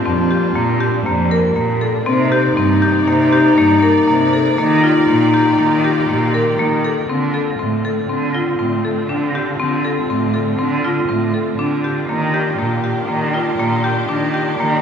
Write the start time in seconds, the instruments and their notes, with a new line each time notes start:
Already playing: string section G3 A#3 D4, clarinet F4
0.05 cello F2, marimba C4
0.31 marimba G4
0.55 cello A#2, marimba A#3
0.80 marimba G4
1.06 cello F2, marimba A#3
1.31 marimba A#4
1.56 cello A#2, marimba A#3
1.81 marimba A4
2.06 cello C3, string section C3 D#4 D5, marimba C4, clarinet D#4
2.32 marimba G4
2.57 cello G2, marimba C4
2.82 marimba G4
3.08 cello C3, marimba A#3
3.33 marimba G4
3.58 cello G2, marimba A#3
3.82 marimba A#4
4.08 cello C3, marimba A#3
4.33 marimba A4
4.58 cello D#3, string section D#3 F4 G4, marimba A#3, clarinet D#4
4.84 marimba F4
5.09 cello A#2, marimba A#3
5.34 marimba G4
5.59 cello D#3, marimba A#3
5.84 marimba G4
6.09 cello A#2, marimba A#3
6.34 marimba A#4
6.59 cello D#3, marimba A#3
6.84 marimba A4
7.09 cello D3, string section D3 C4 F4, marimba C4
7.34 marimba A4
7.59 cello A2, marimba C4
7.85 marimba A4
8.09 cello D3, marimba C4
8.35 marimba F4
8.59 cello A2, marimba C4
8.85 marimba A4
9.09 cello D3, marimba D4
9.35 marimba G4
9.59 cello D3, marimba C4
9.85 marimba A4
10.10 cello A2, marimba C4
10.34 marimba A4
10.59 cello D3, marimba C4
10.85 marimba F4
11.09 cello A2, marimba C4
11.34 marimba A4
11.58 cello D3, marimba D4
11.84 marimba G4
12.09 cello D#3, string section D#3 D4 G4, marimba A#3
12.34 marimba G4
12.58 cello A#2, marimba A#3
12.84 marimba G4
13.09 cello D#3, marimba A#3
13.34 marimba F4
13.59 cello A#2, marimba A#3
13.84 marimba G4
14.09 cello D#3, marimba D4
14.34 marimba G4
14.59 cello D#3, marimba A#3